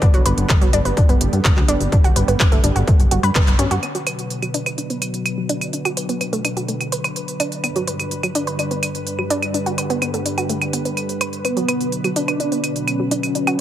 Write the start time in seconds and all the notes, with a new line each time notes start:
Already playing: D3 B3
0.02 G1 G3 B3, kick, closed hi-hat
0.14 G1 F#3, closed hi-hat
0.26 G1 B4, closed hi-hat
0.38 G1, closed hi-hat
0.49 G1, kick, clap, closed hi-hat
0.61 G1 F#3, closed hi-hat
0.73 G1 D4, closed hi-hat
0.85 G1 B4, closed hi-hat
0.97 G1 D4, kick, closed hi-hat
1.09 G1 B3, closed hi-hat
1.21 G1, closed hi-hat
1.33 G2, closed hi-hat
1.45 G1, kick, clap, closed hi-hat
1.57 D2 F#3, clap
1.68 G1 D4, closed hi-hat
1.80 G1, closed hi-hat
1.92 G1 D4, kick, closed hi-hat
2.04 G1 F#4, closed hi-hat
2.16 G1 B4, closed hi-hat
2.28 G1 B3, closed hi-hat
2.40 G1 B3, kick, clap, closed hi-hat
2.52 G1 A3, closed hi-hat
2.64 G1 D4, closed hi-hat
2.76 G1 F#4, closed hi-hat
2.87 G1 A3, kick, closed hi-hat
2.99 G1, closed hi-hat
3.11 G1 F#4, closed hi-hat
3.23 G2 B4, closed hi-hat
3.35 G1 B3, kick, clap, closed hi-hat
3.47 G1, clap, closed hi-hat
3.59 G2 C#4, closed hi-hat
3.71 G2 F#4, closed hi-hat
3.83 B2 D3 F#3 B3 B4, closed hi-hat, claves
3.95 F#3, closed hi-hat
4.07 B4, closed hi-hat, claves
4.19 closed hi-hat
4.30 closed hi-hat
4.42 F#3, closed hi-hat, claves
4.54 D4, closed hi-hat
4.66 B4, closed hi-hat, claves
4.78 D4, closed hi-hat
4.90 B3, closed hi-hat
5.02 closed hi-hat, claves
5.14 closed hi-hat
5.26 closed hi-hat, claves
5.38 F#3
5.49 D4, closed hi-hat
5.61 closed hi-hat, claves
5.73 D4, closed hi-hat
5.85 F#4, closed hi-hat, claves
5.97 B4, closed hi-hat
6.09 B3, closed hi-hat
6.21 B3, closed hi-hat, claves
6.33 A3, closed hi-hat
6.45 D4, closed hi-hat, claves
6.57 F#4, closed hi-hat
6.68 A3, closed hi-hat
6.81 closed hi-hat, claves
6.92 B4, closed hi-hat
7.04 B4, closed hi-hat, claves
7.16 closed hi-hat
7.28 closed hi-hat
7.40 D4, closed hi-hat, claves
7.52 closed hi-hat
7.64 G2 G3 B3, closed hi-hat, claves
7.76 F#3, closed hi-hat
7.87 B4, closed hi-hat
8.00 closed hi-hat, claves
8.11 closed hi-hat
8.23 F#3, closed hi-hat, claves
8.35 D4, closed hi-hat
8.47 B4, closed hi-hat
8.59 D4, closed hi-hat, claves
8.71 B3, closed hi-hat
8.83 closed hi-hat, claves
8.95 closed hi-hat
9.07 closed hi-hat
9.19 F#3, claves
9.30 D4, closed hi-hat
9.42 closed hi-hat, claves
9.54 D4, closed hi-hat
9.66 F#4, closed hi-hat
9.78 B4, closed hi-hat, claves
9.90 B3, closed hi-hat
10.02 B3, closed hi-hat, claves
10.14 A3, closed hi-hat
10.26 D4, closed hi-hat
10.38 F#4, closed hi-hat, claves
10.49 A3, closed hi-hat
10.62 closed hi-hat, claves
10.73 B3, closed hi-hat
10.85 B3, closed hi-hat
10.97 closed hi-hat, claves
11.09 closed hi-hat
11.21 B4, closed hi-hat, claves
11.33 closed hi-hat
11.45 B2 F#3 B3, closed hi-hat, claves
11.57 F#3, closed hi-hat
11.68 B4, closed hi-hat, claves
11.81 closed hi-hat
11.92 closed hi-hat
12.04 F#3, closed hi-hat, claves
12.16 D4, closed hi-hat
12.28 B4, closed hi-hat, claves
12.40 D4, closed hi-hat
12.52 B3, closed hi-hat
12.64 closed hi-hat, claves
12.76 closed hi-hat
12.88 C#4, closed hi-hat, claves
13.00 F#3
13.11 D4, closed hi-hat
13.23 closed hi-hat, claves
13.35 D4, closed hi-hat
13.47 F#4, closed hi-hat, claves